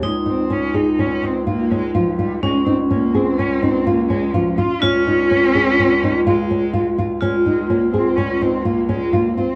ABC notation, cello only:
X:1
M:5/4
L:1/8
Q:1/4=125
K:Db
V:1 name="Cello"
A, C D E D C B, A, F, =G, | A, C B, C D C B, A, F, F | D6 A,3 z | A,2 B, C D C B, A, B, C |]